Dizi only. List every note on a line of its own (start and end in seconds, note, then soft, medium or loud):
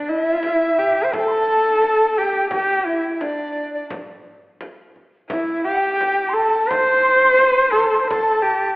0.08 0.21 D#5 medium
0.21 1.14 E5 medium
1.13 1.21 A5 medium
1.19 1.28 G5 medium
1.27 1.32 C6 medium
1.31 1.81 A5 medium
1.81 2.18 A5 medium
2.16 2.50 G5 medium
2.51 2.80 G5 medium
2.80 2.88 G5 medium
2.86 3.14 E5 medium
3.14 3.23 E5 medium
3.22 3.73 D5 medium
3.73 3.90 D5 medium
5.30 5.63 E5 medium
5.64 6.30 G5 medium
6.28 6.36 C6 medium
6.34 6.71 A5 medium
6.70 8.12 C6 loud
8.10 8.76 A5 medium